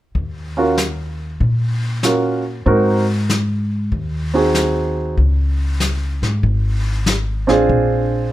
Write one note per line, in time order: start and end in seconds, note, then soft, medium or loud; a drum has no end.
0.15 1.37 D#2 medium
0.15 brush sweep soft
0.15 kick soft
0.57 0.76 C#4 soft
0.57 0.76 F4 soft
0.57 0.76 F#4 soft
0.57 0.77 A#4 soft
0.78 snare soft
0.78 hi-hat pedal soft
1.40 2.62 A#2 medium
1.40 brush sweep soft
1.40 kick soft
2.03 2.41 C#4 soft
2.03 2.42 F4 soft
2.03 2.42 F#4 soft
2.03 2.42 A#4 soft
2.03 snare soft
2.03 hi-hat pedal soft
2.66 3.88 G#2 medium
2.66 3.04 C4 soft
2.66 3.04 D#4 soft
2.66 3.05 F#4 soft
2.66 3.05 A#4 soft
2.66 brush sweep soft
2.66 kick soft
3.30 snare soft
3.30 hi-hat pedal soft
3.92 5.14 D#2 medium
3.92 brush sweep soft
3.92 kick soft
4.34 5.14 C4 soft
4.34 5.14 D#4 soft
4.34 5.14 F#4 soft
4.34 5.14 G#4 soft
4.55 snare soft
4.55 hi-hat pedal soft
5.17 6.19 C#2 medium
5.17 brush sweep soft
5.17 kick soft
5.80 snare soft
5.80 hi-hat pedal soft
6.22 6.42 G#2 medium
6.22 snare soft
6.43 7.44 G#1 medium
6.43 brush sweep soft
6.43 kick soft
7.06 snare soft
7.06 hi-hat pedal soft
7.47 7.68 A1 medium
7.47 8.28 C4 medium
7.47 8.28 D4 soft
7.47 8.28 F4 soft
7.47 8.29 G#4 medium
7.47 snare soft
7.69 8.32 A#1 medium
7.69 brush sweep soft
7.69 kick soft